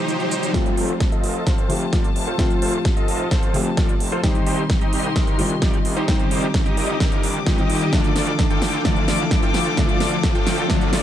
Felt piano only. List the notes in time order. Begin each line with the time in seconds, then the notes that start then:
Already playing: C3 D#3 G3 C4
0.53 F3 A3 C4 F4
1.68 F3 A3 C4 G4
2.38 F3 A3 C4 F4
3.53 F3 A3 C4 G4
4.22 D#3 G3 C4 D#4
5.38 D#3 G3 C4 F4
6.07 D#3 G3 C4 D#4
7.46 D#3 G3 C4 F4
7.57 D#3 G3 C4 F4
7.92 D3 F3 A3 D4
8.84 D3 F3 A3 D4
9.76 D3 F3 A3 D4
10.68 D3 F3 A3 D4